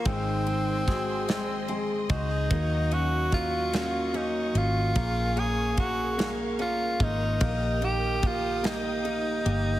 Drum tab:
RD |xxxxxx|xxxxxx|xxxxxx|xxxxxx|
SD |--oo--|---o--|---o--|---o--|
BD |o-o--o|o-o---|o-o--o|o-o---|